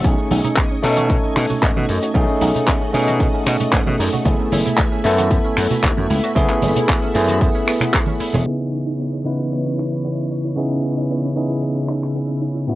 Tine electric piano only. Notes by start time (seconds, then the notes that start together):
0.03 A3 C#4 D#4 G#4
0.82 A3 C#4 D#4 A4
2.14 A3 C#4 D#4 G#4
2.93 A3 C#4 D#4 G#4
4.25 A3 B3 E4 G#4
5.04 A3 B3 E4 A4
6.35 A3 B3 E4 G#4
7.14 A3 B3 E4 G#4
8.45 C#3 B3 D#4 E4 G#4
9.25 C#3 B3 D#4 E4 B4
10.56 C#3 B3 D#4 E4 G#4
11.35 C#3 B3 D#4 E4 G#4
12.67 A2 B3 C#4 E4 F#4